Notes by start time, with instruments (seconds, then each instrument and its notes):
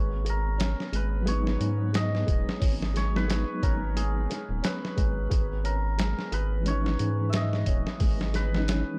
Already playing: analog synth bass G#1, felt piano G#3, synth texture B3, hammered dulcimer B4 C#5
0.25 felt piano G#4, closed hi-hat
0.29 hammered dulcimer A#4
0.58 felt piano C#4, snare, closed hi-hat
0.80 snare
0.92 analog synth bass G#1, felt piano G#3, hammered dulcimer B4, closed hi-hat
1.22 reed electric piano F#3 G#3, felt piano G#4
1.27 reed electric piano B3, hammered dulcimer C#5, closed hi-hat
1.32 reed electric piano D#4
1.47 snare
1.59 analog synth bass G#2, felt piano C#4, closed hi-hat
1.93 felt piano G#3, hammered dulcimer D#5, snare, closed hi-hat
2.15 snare
2.27 analog synth bass D#1, felt piano G#4, kick, closed hi-hat
2.49 snare
2.60 analog synth bass G#1, felt piano C#4, kick, open hi-hat
2.82 snare
2.94 felt piano G#3, hammered dulcimer C#5, snare, closed hi-hat
3.09 reed electric piano F#3 G#3
3.16 reed electric piano B3 D#4, hammered dulcimer B4, snare
3.28 felt piano G#4, snare, closed hi-hat
3.62 analog synth bass G#1, felt piano C#4, hammered dulcimer A#4, kick, closed hi-hat
3.96 felt piano G#3, hammered dulcimer G#4, closed hi-hat
4.30 felt piano G#4, snare, closed hi-hat
4.49 analog synth bass D#1
4.62 felt piano C#4, hammered dulcimer B4, snare, closed hi-hat
4.85 snare
4.97 analog synth bass G#1, felt piano G#3, kick, closed hi-hat
5.30 analog synth bass G#1, felt piano G#4, kick, closed hi-hat
5.64 felt piano C#4, hammered dulcimer A#4, closed hi-hat
5.98 felt piano G#3, snare, closed hi-hat
6.19 snare
6.32 analog synth bass G#1, felt piano G#4, hammered dulcimer B4, closed hi-hat
6.60 reed electric piano E3 G#3
6.66 felt piano C#4, reed electric piano C#4, hammered dulcimer C#5, closed hi-hat
6.70 reed electric piano D#4
6.86 snare
6.99 analog synth bass G#2, felt piano G#3, closed hi-hat
7.29 felt piano G#4, hammered dulcimer E5, closed hi-hat
7.34 hammered dulcimer D#5, snare
7.53 snare
7.66 analog synth bass D#1, felt piano C#4, kick, closed hi-hat
7.87 snare
8.00 analog synth bass G#1, felt piano G#3, kick, open hi-hat
8.21 snare
8.34 felt piano G#4, hammered dulcimer B4, snare, closed hi-hat
8.49 reed electric piano E3 G#3
8.54 reed electric piano C#4 D#4, snare
8.68 felt piano C#4, snare, closed hi-hat